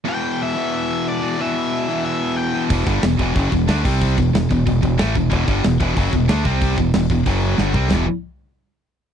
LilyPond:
<<
  \new Staff \with { instrumentName = "Lead electric guitar" } { \time 4/4 \key e \minor \tempo 4 = 184 g''4 e''4 e''4 d''4 | e''2 e''4 g''8. r16 | r1 | r1 |
r1 | r1 | r1 | }
  \new Staff \with { instrumentName = "Distorted electric guitar" } { \clef bass \time 4/4 \key e \minor <e, b, e>4. <e, b, e>2~ <e, b, e>8 | <e, b, e>4. <e, b, e>2~ <e, b, e>8 | <e, b, e>8 <g, d g>8 <e, b,>8 <e, b, e>8 <fis, cis fis>8 <e, b,>8 <d a d'>8 <c g c'>8~ | <c g c'>8 <e, b,>8 <e, b,>8 <e, b,>8 <e, b,>8 <e, b,>8 <a, e a>8 <e, b,>8 |
<e, b, e>8 <g, d g>8 <e, b,>8 <e, b, e>8 <fis, cis fis>8 <e, b,>8 <d a d'>8 <c g c'>8~ | <c g c'>8 <e, b,>8 <e, b,>8 <e, b,>8 <fis, cis fis>4 <g, d g>8 <c g c'>8 | <e, b, e>8 r2. r8 | }
  \new Staff \with { instrumentName = "Distorted electric guitar" } { \clef bass \time 4/4 \key e \minor <e, b, e>2.~ <e, b, e>8 <e, b, e>8 | <e, b, e>2.~ <e, b, e>8 <e, b, e>8 | <e, b, e>8 <g, d g>8 <e, b,>8 <e, b, e>8 <fis, cis fis>8 <e, b,>8 <d a d'>8 <c g c'>8~ | <c g c'>8 <e, b,>8 <e, b,>8 <e, b,>8 <e, b,>8 <e, b,>8 <a, e a>8 <e, b,>8 |
<e, b, e>8 <g, d g>8 <e, b,>8 <e, b, e>8 <fis, cis fis>8 <e, b,>8 <d a d'>8 <c g c'>8~ | <c g c'>8 <e, b,>8 <e, b,>8 <e, b,>8 <fis, cis fis>4 <g, d g>8 <c g c'>8 | <e, b, e>8 r2. r8 | }
  \new Staff \with { instrumentName = "Fingered electric bass" } { \clef bass \time 4/4 \key e \minor r1 | r1 | e,,8 g,,8 e,,8 e,,8 fis,,8 e,,8 d,8 c,8~ | c,8 e,,8 e,,8 e,,8 e,,8 e,,8 a,,8 e,,8 |
e,,8 g,,8 e,,8 e,,8 fis,,8 e,,8 d,8 c,8~ | c,8 e,,8 e,,8 e,,8 fis,,4 g,,8 c,8 | e,,8 r2. r8 | }
  \new DrumStaff \with { instrumentName = "Drums" } \drummode { \time 4/4 r4 r4 r4 r4 | r4 r4 r4 r4 | <cymc bd>8 <cymc bd>8 <cymc sn>8 <cymc bd>8 <cymc bd>8 <cymc bd>8 <cymc sn>8 <cymc bd>8 | <cymc bd>8 <cymc bd>8 <cymc sn>8 <cymc bd>8 <cymc bd>8 <cymc bd>8 <cymc sn>8 <cymc bd>8 |
<cymc bd>8 <cymc bd>8 <cymc sn>8 <cymc bd>8 <cymc bd>8 <cymc bd>8 <cymc sn>8 <cymc bd>8 | <cymc bd>8 <cymc bd>8 <cymc sn>8 <cymc bd>8 <cymc bd>8 cymc8 sn8 bd8 | <cymc sn tomfh>4 r4 r4 r4 | }
>>